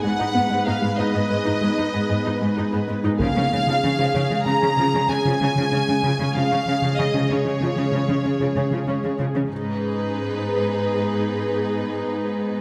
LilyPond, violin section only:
\new Staff \with { instrumentName = "Violin section" } { \time 5/4 \key gis \dorian \tempo 4 = 95 fis''4 eis''8 dis''2. r8 | eis''2 ais''4 gis''2 | eis''4 dis''8 cis''2. r8 | b'1~ b'4 | }